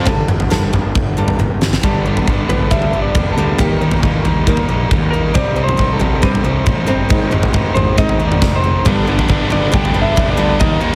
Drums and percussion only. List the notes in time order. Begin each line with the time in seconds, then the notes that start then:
0.06 kick, floor tom
0.28 mid tom
0.40 floor tom
0.51 snare, mid tom
0.73 floor tom, mid tom
0.95 kick
1.28 floor tom
1.40 high tom
1.62 snare
1.73 snare
1.83 kick, floor tom
2.17 floor tom
2.28 kick
2.50 floor tom
2.71 kick
2.82 floor tom
3.15 kick, floor tom
3.58 kick, floor tom
3.91 floor tom
4.03 kick
4.25 floor tom
4.47 kick
4.57 floor tom
4.91 kick, floor tom
5.35 kick, floor tom
5.69 floor tom
5.79 kick
6.01 floor tom
6.23 kick
6.35 floor tom
6.67 kick, floor tom
7.10 kick, floor tom
7.32 mid tom
7.43 floor tom
7.54 kick
7.77 floor tom, mid tom
7.98 kick
8.09 floor tom
8.32 mid tom
8.42 kick, snare, floor tom
8.86 kick, floor tom
9.19 floor tom
9.30 kick
9.52 floor tom
9.74 kick
9.85 floor tom
10.17 kick, floor tom
10.61 kick, floor tom